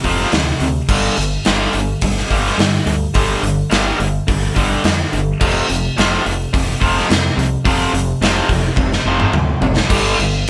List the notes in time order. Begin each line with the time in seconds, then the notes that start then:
0.04 F1 F2 C3 F3, kick, open hi-hat
0.20 snare
0.32 D2 F2 C3, snare, open hi-hat
0.60 D2 F2 C3, open hi-hat
0.88 G1 G2 D3 G3, kick, crash
1.17 G1 G2 D3, open hi-hat
1.45 G1 G2 D3 G3, snare, open hi-hat
1.73 G1 G2 D3, open hi-hat
2.01 G1 G2 D3, kick, open hi-hat
2.17 snare
2.30 G1 G2 D3 G3, kick, open hi-hat
2.46 snare
2.58 G2 D3, snare, open hi-hat
2.86 D2 G2 D3, open hi-hat
3.14 G1 G2 D3 G3, kick, open hi-hat
3.43 G1 G2 D3, open hi-hat
3.70 G1 G2 D3 G3, snare, open hi-hat
3.98 G1 G2 D3, open hi-hat
4.27 G1 G2 D3, kick, open hi-hat
4.55 G1 G2 D3 G3, kick, open hi-hat
4.84 F2 G2 D3, snare, open hi-hat
5.12 G1 G2 D3, open hi-hat
5.40 F1 F2 C3 F3, kick, crash
5.68 F1 F2 C3, open hi-hat
5.96 F1 F2 C3 F3, snare, open hi-hat
6.24 F1 F2 C3, open hi-hat
6.53 F1 F2 C3, kick, open hi-hat
6.80 F1 F2 C3 F3, kick, open hi-hat
6.98 snare
7.09 F2 C3, snare, open hi-hat
7.36 C2 F2 C3, open hi-hat
7.65 F1 F2 C3 F3, kick, open hi-hat
7.93 F1 F2 C3, open hi-hat
8.21 F1 F2 C3 F3, snare, open hi-hat
8.49 F1 F2 C3, kick, open hi-hat
8.76 F1 F2 C3, kick, high tom
8.92 snare
9.05 F1 F2 C3 F3
9.20 mid tom
9.33 D2 F2 C3, mid tom
9.61 F#1 F2 C3, floor tom
9.77 snare
9.89 G1 G2 D3 G3, kick, crash
10.18 G1 G2 D3, crash